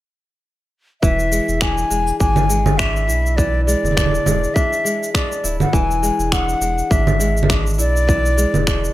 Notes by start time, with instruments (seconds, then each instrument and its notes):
1.02 sub bass E1, kora E3, flute E5, kick, shaker
1.19 shaker
1.32 kora G#3, shaker
1.48 sub bass E1, shaker
1.61 kora D4, flute G#5, finger snap, kick, shaker
1.78 shaker
1.90 sub bass E1, kora G#3, shaker
2.07 shaker
2.20 sub bass G#1, kora D4, flute G#5, kick, shaker
2.36 low conga, shaker
2.49 kora G#3, shaker
2.66 low conga, shaker
2.78 kora D4, flute E5, finger snap, kick, shaker
2.96 shaker
3.08 sub bass B1, kora E4, shaker
3.26 shaker
3.36 kora E3, flute D5, kick, shaker
3.65 kora G#3, flute D5, shaker
3.83 sub bass E1, low conga, shaker
3.91 low conga
3.97 kora D4, finger snap, kick, low conga, shaker
4.06 low conga
4.15 shaker
4.26 sub bass E1, kora G#3, low conga, shaker
4.44 shaker
4.54 kora D4, flute E5, kick, shaker
4.73 shaker
4.84 kora G#3, shaker
5.03 shaker
5.14 kora D4, flute D5, finger snap, kick, shaker
5.32 shaker
5.44 sub bass D1, kora E4, shaker
5.60 flute F#5, low conga, shaker
5.73 sub bass E1, kora E3, flute G#5, kick, shaker
5.91 shaker
6.03 kora G#3, shaker
6.19 sub bass E1, shaker
6.32 kora D4, flute F#5, finger snap, kick, shaker
6.49 shaker
6.61 sub bass E1, kora G#3, shaker
6.78 shaker
6.90 sub bass G#1, kora D4, flute E5, kick, shaker
7.07 low conga, shaker
7.20 kora G#3, shaker
7.37 shaker
7.43 low conga
7.49 kora D4, finger snap, kick, shaker
7.67 shaker
7.69 shaker
7.73 shaker
7.75 shaker
7.78 sub bass B1, kora E4, shaker
7.79 flute D5, shaker
7.96 shaker
8.07 kora E3, kick, shaker
8.26 shaker
8.37 kora G#3, shaker
8.54 sub bass E1, low conga, shaker
8.67 kora D4, finger snap, kick, shaker
8.84 shaker